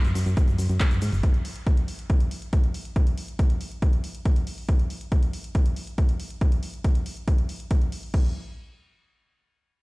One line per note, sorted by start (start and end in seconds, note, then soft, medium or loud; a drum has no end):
0.04 0.13 F#2 medium
0.04 closed hi-hat soft
0.04 shaker soft
0.15 0.24 F#2 loud
0.15 open hi-hat loud
0.15 shaker medium
0.26 0.35 F#2 medium
0.26 shaker soft
0.37 kick loud
0.37 closed hi-hat medium
0.37 shaker medium
0.48 0.57 F#2 medium
0.48 closed hi-hat soft
0.48 shaker soft
0.58 0.67 F#2 loud
0.58 open hi-hat loud
0.58 shaker medium
0.69 0.78 F#2 medium
0.69 closed hi-hat soft
0.69 shaker soft
0.80 kick loud
0.80 clap loud
0.80 closed hi-hat medium
0.80 shaker medium
0.91 1.00 F#2 medium
0.91 closed hi-hat soft
0.91 shaker soft
1.02 1.11 G#2 loud
1.02 open hi-hat loud
1.02 shaker medium
1.12 1.21 F#1 medium
1.12 open hi-hat medium
1.12 shaker soft
1.23 kick loud
1.23 closed hi-hat medium
1.34 closed hi-hat soft
1.45 open hi-hat loud
1.56 closed hi-hat soft
1.67 kick loud
1.67 closed hi-hat medium
1.77 closed hi-hat soft
1.88 open hi-hat loud
1.99 closed hi-hat soft
2.10 kick loud
2.10 closed hi-hat medium
2.20 closed hi-hat soft
2.31 open hi-hat loud
2.42 closed hi-hat medium
2.53 kick loud
2.53 closed hi-hat medium
2.64 closed hi-hat soft
2.74 open hi-hat loud
2.85 closed hi-hat soft
2.96 kick loud
2.96 closed hi-hat medium
3.07 closed hi-hat medium
3.18 open hi-hat medium
3.28 closed hi-hat medium
3.39 kick loud
3.39 closed hi-hat medium
3.50 closed hi-hat medium
3.61 open hi-hat loud
3.71 closed hi-hat medium
3.82 kick loud
3.82 closed hi-hat medium
3.93 closed hi-hat soft
4.04 open hi-hat medium
4.15 closed hi-hat soft
4.25 kick loud
4.25 closed hi-hat medium
4.36 closed hi-hat soft
4.47 open hi-hat loud
4.58 open hi-hat medium
4.69 kick loud
4.69 closed hi-hat medium
4.79 closed hi-hat medium
4.90 open hi-hat medium
5.01 closed hi-hat medium
5.12 kick loud
5.12 closed hi-hat medium
5.23 closed hi-hat medium
5.33 open hi-hat loud
5.44 closed hi-hat medium
5.55 kick loud
5.55 closed hi-hat medium
5.66 closed hi-hat soft
5.76 open hi-hat medium
5.87 closed hi-hat medium
5.98 kick loud
5.98 closed hi-hat medium
6.09 closed hi-hat soft
6.20 open hi-hat medium
6.30 closed hi-hat medium
6.41 kick loud
6.41 closed hi-hat medium
6.52 closed hi-hat medium
6.63 open hi-hat loud
6.74 closed hi-hat medium
6.84 kick loud
6.84 closed hi-hat medium
6.95 closed hi-hat medium
7.06 open hi-hat loud
7.17 closed hi-hat medium
7.28 kick loud
7.28 closed hi-hat medium
7.38 closed hi-hat medium
7.49 open hi-hat medium
7.60 closed hi-hat medium
7.71 kick loud
7.71 closed hi-hat medium
7.81 closed hi-hat medium
7.92 open hi-hat medium
8.03 open hi-hat medium
8.14 kick loud
8.14 crash medium